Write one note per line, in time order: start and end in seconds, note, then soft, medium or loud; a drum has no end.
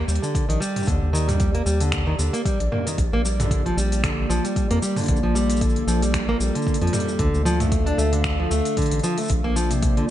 0.00 5.05 G4 medium
0.00 7.15 D5 medium
0.08 0.19 D#2 loud
0.08 0.22 G3 medium
0.08 shaker medium
0.15 open hi-hat soft
0.22 0.48 D3 medium
0.22 shaker soft
0.35 kick loud
0.35 open hi-hat soft
0.35 shaker soft
0.49 0.58 A#1 medium
0.49 0.60 D#3 medium
0.49 open hi-hat medium
0.60 0.86 G3 medium
0.60 shaker medium
0.76 mid tom medium
0.76 open hi-hat soft
0.76 shaker soft
0.80 shaker soft
0.83 shaker soft
0.85 0.98 D#2 loud
0.85 1.12 D3 medium
0.85 kick loud
0.85 open hi-hat soft
0.85 shaker soft
0.89 shaker soft
1.02 1.61 D#2 medium
1.13 1.27 D#3 medium
1.13 shaker medium
1.28 1.53 G3 medium
1.28 mid tom medium
1.28 open hi-hat soft
1.28 shaker soft
1.40 kick loud
1.40 open hi-hat soft
1.40 shaker soft
1.55 1.65 A#3 medium
1.55 open hi-hat soft
1.66 2.14 D#2 medium
1.66 1.80 G3 medium
1.66 shaker medium
1.80 2.06 D3 medium
1.80 open hi-hat soft
1.80 shaker soft
1.92 finger snap medium
1.92 kick loud
1.92 open hi-hat soft
1.92 shaker soft
2.07 2.18 D#3 medium
2.19 2.30 D#2 medium
2.19 2.32 D3 medium
2.19 shaker medium
2.33 2.44 A#3 loud
2.33 open hi-hat soft
2.33 shaker soft
2.45 2.59 G3 medium
2.45 kick loud
2.45 open hi-hat soft
2.45 shaker soft
2.60 2.68 A#1 loud
2.60 open hi-hat soft
2.72 2.86 A#3 medium
2.72 mid tom medium
2.87 2.97 D#3 medium
2.87 open hi-hat soft
2.87 shaker medium
2.98 3.09 A#1 loud
2.98 7.15 A#3 medium
2.98 7.15 F4 medium
2.98 kick loud
2.98 open hi-hat soft
2.98 shaker soft
3.12 3.72 A#1 medium
3.12 3.24 A#3 loud
3.25 3.39 G3 medium
3.25 shaker medium
3.40 3.64 D3 medium
3.40 mid tom medium
3.40 open hi-hat soft
3.40 shaker soft
3.51 kick loud
3.51 open hi-hat soft
3.51 shaker soft
3.66 3.76 F3 medium
3.66 open hi-hat soft
3.77 4.24 A#1 medium
3.77 4.02 G3 medium
3.77 shaker medium
3.92 open hi-hat soft
3.92 shaker soft
4.04 4.29 D3 medium
4.04 finger snap medium
4.04 kick loud
4.04 open hi-hat medium
4.04 shaker soft
4.29 4.40 A#1 loud
4.29 4.43 F3 medium
4.29 shaker medium
4.44 4.69 G3 medium
4.44 open hi-hat soft
4.44 shaker soft
4.56 kick loud
4.56 open hi-hat soft
4.56 shaker soft
4.71 4.79 F2 loud
4.71 4.81 A#3 loud
4.71 open hi-hat soft
4.82 4.96 G3 medium
4.82 shaker medium
4.96 5.22 D3 medium
4.96 mid tom medium
4.96 open hi-hat soft
4.96 shaker soft
4.99 open hi-hat soft
5.01 open hi-hat soft
5.04 open hi-hat soft
5.06 open hi-hat soft
5.08 5.19 A#1 medium
5.08 7.17 A4 medium
5.08 kick loud
5.08 open hi-hat medium
5.16 shaker soft
5.23 5.82 A#1 medium
5.23 5.34 F3 medium
5.35 5.60 G3 loud
5.35 shaker medium
5.50 open hi-hat soft
5.50 shaker soft
5.56 shaker soft
5.61 5.87 D3 medium
5.61 kick loud
5.61 open hi-hat medium
5.61 shaker soft
5.69 shaker soft
5.76 open hi-hat soft
5.87 6.35 A#1 medium
5.87 6.01 F3 medium
5.87 shaker medium
6.02 6.27 G3 medium
6.02 open hi-hat soft
6.02 shaker soft
6.14 finger snap medium
6.14 kick medium
6.14 open hi-hat soft
6.14 shaker soft
6.29 6.39 A#3 loud
6.40 6.51 A#1 loud
6.40 6.54 G3 medium
6.40 shaker medium
6.55 6.80 D3 medium
6.55 open hi-hat soft
6.55 shaker soft
6.62 shaker soft
6.67 kick medium
6.67 shaker soft
6.74 open hi-hat soft
6.74 shaker soft
6.81 6.90 F2 loud
6.81 6.92 F3 medium
6.81 open hi-hat soft
6.87 open hi-hat soft
6.93 7.18 G3 loud
6.93 mid tom medium
6.93 open hi-hat soft
6.93 shaker medium
7.00 open hi-hat soft
7.08 shaker soft
7.19 7.30 D2 loud
7.19 9.27 D3 medium
7.19 7.44 D3 medium
7.19 9.28 D4 medium
7.19 9.28 A4 medium
7.19 9.27 F5 medium
7.19 kick loud
7.19 open hi-hat medium
7.34 7.93 D2 medium
7.34 shaker soft
7.45 7.59 F3 loud
7.45 shaker medium
7.60 7.85 A3 medium
7.60 mid tom medium
7.60 open hi-hat soft
7.60 shaker soft
7.72 kick loud
7.72 open hi-hat medium
7.72 shaker soft
7.86 7.97 D4 loud
7.86 open hi-hat soft
7.98 8.46 D2 loud
7.98 8.12 A3 medium
7.98 shaker medium
8.13 8.38 D3 medium
8.13 open hi-hat soft
8.24 finger snap medium
8.24 kick medium
8.24 shaker soft
8.39 8.50 F3 medium
8.51 8.61 D2 loud
8.51 8.76 A3 medium
8.51 shaker medium
8.65 open hi-hat soft
8.65 shaker soft
8.77 9.02 D3 medium
8.77 kick medium
8.77 open hi-hat soft
8.77 shaker soft
8.82 open hi-hat soft
8.86 open hi-hat soft
8.91 9.00 A1 loud
8.91 open hi-hat medium
8.94 open hi-hat soft
8.99 open hi-hat soft
9.04 9.17 F3 medium
9.04 shaker medium
9.18 9.30 A3 medium
9.18 open hi-hat soft
9.18 shaker soft
9.20 shaker soft
9.23 shaker soft
9.25 shaker soft
9.28 9.41 A#1 loud
9.28 10.10 A#3 medium
9.28 10.10 F4 medium
9.28 10.10 C5 medium
9.28 10.10 D5 medium
9.28 kick loud
9.28 open hi-hat medium
9.28 shaker soft
9.30 shaker soft
9.44 10.04 A#1 medium
9.44 9.55 A#3 loud
9.56 9.70 F3 medium
9.56 shaker medium
9.71 9.95 C3 medium
9.71 open hi-hat soft
9.71 shaker soft
9.82 kick loud
9.82 open hi-hat medium
9.82 shaker soft
9.97 10.08 D3 medium
9.97 open hi-hat soft